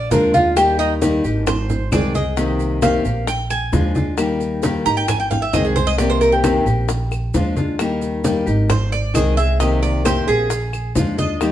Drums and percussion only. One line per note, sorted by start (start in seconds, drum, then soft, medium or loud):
0.11 high bongo soft
0.11 low bongo medium
0.11 high conga medium
0.11 maracas medium
0.34 high bongo soft
0.34 high conga medium
0.34 maracas soft
0.57 high bongo medium
0.57 high conga soft
0.57 claves medium
0.57 maracas medium
0.79 high bongo soft
0.79 high conga soft
0.79 maracas soft
1.02 high bongo medium
1.02 high conga medium
1.02 maracas medium
1.24 high conga soft
1.24 maracas soft
1.47 high bongo medium
1.47 high conga soft
1.47 low conga medium
1.47 claves medium
1.47 maracas medium
1.70 high bongo soft
1.70 high conga soft
1.70 low conga medium
1.70 maracas soft
1.92 high bongo soft
1.92 low bongo medium
1.92 high conga medium
1.92 claves medium
1.92 maracas medium
2.15 high bongo soft
2.15 high conga medium
2.15 maracas soft
2.37 high bongo medium
2.37 high conga soft
2.37 maracas medium
2.60 high bongo soft
2.60 high conga soft
2.60 maracas soft
2.82 high bongo medium
2.82 high conga medium
2.82 claves medium
2.82 maracas medium
3.05 high conga soft
3.05 maracas soft
3.27 high bongo medium
3.27 high conga soft
3.27 maracas medium
3.50 high bongo soft
3.50 high conga soft
3.50 claves medium
3.50 maracas soft
3.73 high bongo soft
3.73 low bongo medium
3.73 high conga medium
3.73 maracas medium
3.95 high bongo soft
3.95 high conga medium
3.95 maracas soft
4.18 high bongo medium
4.18 high conga soft
4.18 claves medium
4.18 maracas medium
4.40 high bongo soft
4.40 high conga soft
4.40 maracas soft
4.63 high bongo medium
4.63 high conga medium
4.63 maracas medium
4.86 high conga soft
4.86 maracas soft
5.08 high bongo medium
5.08 high conga soft
5.08 low conga medium
5.08 claves medium
5.08 maracas medium
5.31 high bongo soft
5.31 high conga soft
5.31 low conga medium
5.31 maracas soft
5.53 high bongo soft
5.53 low bongo medium
5.53 high conga medium
5.53 claves medium
5.53 maracas medium
5.76 high bongo soft
5.76 high conga medium
5.76 maracas soft
5.98 high bongo medium
5.98 high conga soft
5.98 maracas medium
6.21 high bongo soft
6.21 high conga soft
6.21 maracas soft
6.44 high bongo medium
6.44 high conga medium
6.44 claves medium
6.44 maracas medium
6.67 high conga soft
6.67 maracas soft
6.89 high bongo medium
6.89 high conga soft
6.89 maracas medium
7.12 high bongo soft
7.12 high conga soft
7.12 claves medium
7.12 maracas soft
7.34 high bongo soft
7.34 low bongo medium
7.34 high conga medium
7.34 maracas medium
7.57 high bongo soft
7.57 high conga medium
7.57 maracas soft
7.79 high bongo medium
7.79 high conga soft
7.79 claves medium
7.79 maracas medium
8.02 high bongo soft
8.02 high conga soft
8.02 maracas soft
8.24 high bongo medium
8.24 high conga medium
8.24 maracas medium
8.47 high conga soft
8.47 maracas soft
8.70 high bongo medium
8.70 high conga soft
8.70 low conga medium
8.70 claves medium
8.70 maracas medium
8.92 high bongo soft
8.92 high conga soft
8.92 maracas soft
9.15 high bongo soft
9.15 low bongo medium
9.15 high conga medium
9.15 claves medium
9.15 maracas medium
9.37 high bongo soft
9.37 maracas soft
9.60 high bongo medium
9.60 high conga soft
9.60 maracas medium
9.82 high bongo soft
9.82 high conga soft
9.82 maracas soft
10.05 high bongo medium
10.05 high conga medium
10.05 claves medium
10.05 maracas medium
10.28 high conga soft
10.28 maracas soft
10.50 high bongo medium
10.50 high conga soft
10.50 maracas medium
10.73 high bongo soft
10.73 high conga soft
10.73 claves medium
10.73 maracas soft
10.95 high bongo soft
10.95 low bongo medium
10.95 high conga medium
10.95 maracas medium
11.18 high bongo soft
11.18 high conga medium
11.18 maracas soft
11.41 high bongo medium
11.41 high conga soft
11.41 claves medium
11.41 maracas medium